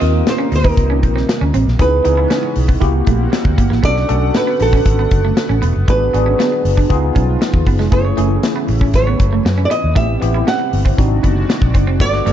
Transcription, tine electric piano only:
Already playing: G4
0.00 A#3 C4 F4 A#4
1.79 B3 D#4 E4 G#4
2.04 B3 D#4 E4 G#4
2.80 A#3 E4 F#4 G4
3.83 C#4 D4 F#4 A4
4.08 C#4 D4 F#4 A4
5.88 B3 D4 F#4 G#4
6.13 B3 D4 F#4 G#4
6.90 B3 D#4 F4 G#4
7.91 A3 C#4 E4 G#4
8.16 A3 C#4 E4 G#4
9.95 B3 C4 E4 G4
10.21 B3 C4 E4 G4
10.98 C4 D4 D#4 F#4
12.00 B3 D4 F#4 A4
12.25 B3 D4 F#4 A4

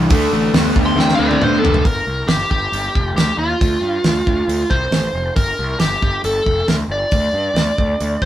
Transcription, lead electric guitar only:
0.86 C6
1.00 G5
1.14 F5
1.19 C5
1.29 D5
1.44 C5
1.59 A4
1.86 A#4
2.28 G4
2.51 G4
3.16 G4
3.38 F4
4.70 C5
5.36 A#4
5.80 G4
6.25 A4
6.69 A#4
6.92 D5
8.22 C5

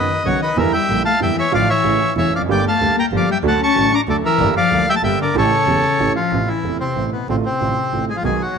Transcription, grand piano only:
0.25 B1 B2 D#3 F#3 B3 F#4
0.57 E2 D3 E3 G3 A#3 E4
0.89 A#1 A#2 D3 G3 A#3 E4
1.20 E2 D3 E3 G3 A#3 E4
1.52 A1 A2 D3 F3 A3 F4
1.83 A1 A2 C#3 E3 A3 E4
2.16 E1 E2 C#3 E3 A3 E4
2.38 E2 F2
2.46 G1 F#2 G2 D3 G3 A#3 G4
2.80 D2 D3 G3 A#3 G4
3.12 G1 G2 D3 G3 A#3 G4
3.43 D2 D3 F#3 A3 F#4
3.75 A1 A2 D3 F#3 A3 F#4
4.07 D2 D3 F#3 A3 F#4
4.40 G1 G2 D3 G3 A#3 G4
4.71 D2 D3 G3 A#3 G4
5.03 G1 G2 D3 G3 A#3 G4
5.35 A1 A2 E3 A3 C#4 G4
5.67 E1 E2 E3 A3 C#4 G4
6.00 A1 A2 E3 A3 C#4 G4
6.32 A1 A2 C3 A3 B3 E4
6.64 E1 E2 C3 A3 B3 E4
6.96 A1 A2 C3 A3 B3 E4
7.29 A1 A2 D3 A3 C4 F4
7.60 A1 A2 D3 A3 C4 F4
7.93 A1 A2 D3 A3 C4 F4
8.24 B1 B2 D#3 F#3 B3 F#4

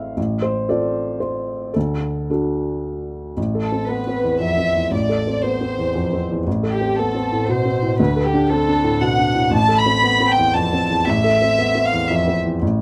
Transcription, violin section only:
3.63 A4
3.89 B4
4.40 E5
4.92 D5
5.44 C5
6.71 G4
6.98 A4
7.49 C5
7.99 B4
8.25 G4
8.50 A4
9.01 F#5
9.52 A5
9.77 B5
10.28 G5
10.55 A5
11.07 E5
11.85 F5
12.10 E5

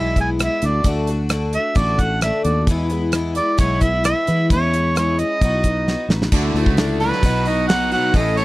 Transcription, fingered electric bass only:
Already playing: B1
0.63 D2
0.85 D2
1.76 A1
2.45 D#2
2.67 E2
3.59 B1
4.28 E3
4.51 E2
5.41 B1
6.09 A1
6.32 D2
6.54 D2
6.67 C#2
7.23 B1
8.14 A1

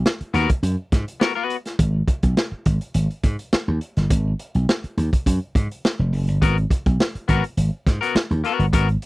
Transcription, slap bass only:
0.21 muted slap bass stroke
0.34 D#2
0.63 F#2
0.92 G#2
1.79 G#1
2.23 B1
2.52 muted slap bass stroke
2.66 G#1
2.95 G#1
3.24 G#2
3.53 muted slap bass stroke
3.68 D#2
3.97 G1
4.11 G#1
4.55 B1
4.84 muted slap bass stroke
4.97 D#2
5.26 F#2
5.55 G#2
5.99 F1
6.13 F#1
6.28 G1
6.42 G#1
6.86 B1
7.15 muted slap bass stroke
7.29 G#1
7.57 G#1
7.87 G#2
8.15 muted slap bass stroke
8.31 D#2
8.59 G1
8.73 G#1

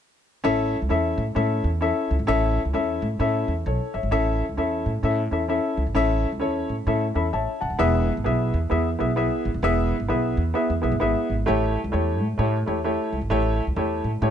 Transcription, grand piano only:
0.44 C#4 E4 A4 E5
0.89 C#4 E4 A4 E5
1.35 C#4 E4 A4 E5
1.81 C#4 E4 A4 E5
2.27 C#4 E4 A4 E5
2.73 C#4 E4 A4 E5
3.19 C#4 E4 A4 E5
3.67 A4 C#5
3.94 C#5 E5
4.11 C#4 E4 A4 E5
4.57 C#4 E4 A4 E5
5.03 C#4 E4 A4 E5
5.31 C#4 E4 A4 E5
5.48 C#4 E4 A4 E5
5.95 C#4 E4 A4 E5
6.40 C#4 E4 A4 C#5
6.87 C#4 E4 A4 E5
7.14 C#4 E4 A4 E5 B5
7.33 C#5 E5 A5
7.61 F#5 A5
7.79 B3 E4 G#4 E5
8.24 B3 E4 G#4 E5
8.70 B3 E4 G#4 E5
8.99 B3 E4 G#4 E5
9.16 B3 E4 G#4 E5
9.63 B3 E4 G#4 E5
10.08 B3 E4 G#4 E5
10.54 B3 E4 G#4 E5
10.82 B3 E4 G#4 E5
11.00 B3 E4 G#4 E5
11.46 A3 E4 G4 C#5
11.92 A3 E4 G4 C#5
12.38 A3 E4 G4 C#5
12.66 A3 E4 G4 C#5
12.84 A3 E4 G4 C#5
13.30 A3 E4 G4 C#5
13.77 A3 E4 G4 C#5
14.22 A3 E4 G4 C#5

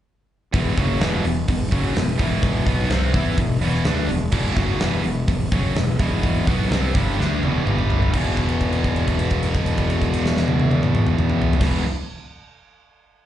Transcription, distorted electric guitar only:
0.53 E2 B2 E3
0.77 F#2 C#3 F#3
1.00 E2 B2 E3
1.25 E2 B2
1.48 E2 B2
1.71 F#2 C#3 F#3
1.95 E2 B2
2.18 E2 B2 E3
2.67 B2 F#3 B3
2.89 C3 G3 C4
3.13 E3 B3 E4
3.37 E2 B2
3.62 E2 B2 E3
3.85 D3 A3 D4
4.08 E2 B2
4.31 E2 B2 E3
4.55 F#2 C#3 F#3
4.80 E2 B2 E3
5.04 E2 B2
5.28 E2 B2
5.52 F#2 C#3 F#3
5.77 E2 B2
5.99 E2 B2 E3
6.47 B2 F#3 B3
6.71 C3 G3 C4
6.93 G2 D3 G3
7.17 D3 A3 D4
7.42 E2 B2 E3
7.66 G2 D3 G3
8.12 E2 B2 E3
11.60 E2 B2
11.64 E3

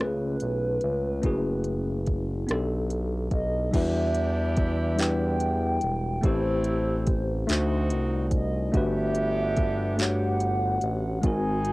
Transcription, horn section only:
3.73 D4 E4 G4
6.23 A3 C4 E4
7.48 C4 D#4 F#4
8.73 B3 D4 G4
11.24 C4 D#4 G#4

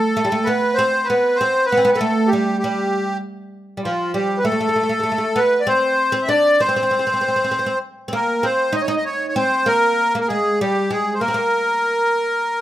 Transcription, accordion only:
Already playing: A4
0.44 B4
0.74 C5
1.04 B4
1.35 C5
1.66 B4
1.92 A4 B4
2.28 G4
2.59 G4
3.84 F4
4.14 G4
4.38 B4
4.44 A4
5.37 B4
5.60 D5
5.68 C5
6.21 E5
6.29 D5
6.60 C5
8.14 A#4
8.45 C5
8.76 D#5
8.82 C#5
8.89 D#5
8.97 D#5
9.05 C#5
9.28 C#5
9.37 C5
9.67 A#4
10.21 A#4
10.28 G#4
10.60 G4
10.91 G#4
11.14 C5
11.20 A#4

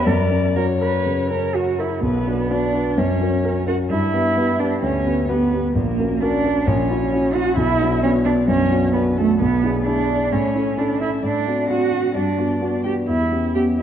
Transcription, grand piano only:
0.06 F#2
0.31 C#4
0.56 F#4
0.81 A#4
1.06 C#3
1.30 C#4
1.54 F#4
1.79 A#4
2.02 B1
2.26 D4 F#4 B4
2.50 D4 F#4 B4
2.73 D4 F#4 B4
2.98 F#2
3.21 C#4 F#4 A#4
3.44 C#4 F#4 A#4
3.67 C#4 F#4 A#4
3.90 G2
4.13 B3 G4 B4
4.37 B3 G4 B4
4.59 B3 G4 B4
4.82 D2
5.06 B3 G4 B4
5.29 B3 G4 B4
5.53 B3 G4 B4
5.75 A#1
5.99 C#4 F#4 A#4
6.22 C#4 F#4 A#4
6.44 C#4 F#4 A#4
6.67 A#1
6.90 C#4 E4 F#4
7.12 C#4 E4 F#4
7.34 C#4 E4 F#4
7.57 B1
7.80 B3 D4 F#4
8.03 B3 D4 F#4
8.25 B3 D4 F#4
8.48 F#2
8.71 B3 D4 F#4
8.94 B3 D4 F#4
9.17 B3 D4 F#4
9.41 B1
9.63 D4 E4 G#4
9.86 D4 E4 G#4
10.10 D4 E4 G#4
10.32 A2
10.55 C#4 E4 A4
10.77 C#4 E4 A4
11.01 C#4 E4 A4
11.23 A2
11.46 C4 D4 F#4
11.69 C4 D4 F#4
11.92 C4 D4 F#4
12.14 G2
12.38 B3 D4 F#4
12.61 B3 D4 F#4
12.85 B3 D4 F#4
13.08 E2
13.32 B3 C#4 G4
13.55 B3 C#4 G4
13.78 B3 C#4 G4

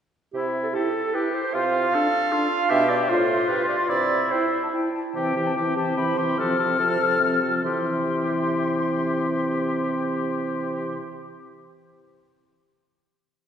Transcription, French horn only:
0.75 E4
1.14 E4
1.94 D4
2.33 D4
2.71 D4
3.09 F4
3.49 F4
4.31 E4
4.74 E4
5.15 E3
5.36 E3
5.57 E3
5.76 E3
5.98 E3
6.18 E3
6.39 F3
6.59 F3
6.79 F3
6.99 F3
7.21 F3
7.43 F3
7.65 E3

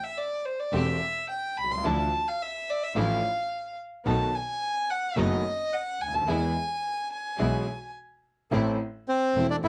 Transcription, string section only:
0.73 A3 C4 G4
1.84 F3 D4 E4
2.96 F3 D4 E4
4.06 A3 B3 D#4
5.16 A3 B3 D#4
6.28 G#3 B3 E4
7.39 G#3 B3 E4
8.52 A3 C4 E4
9.36 A3 C4 E4
9.63 A3 C4 E4

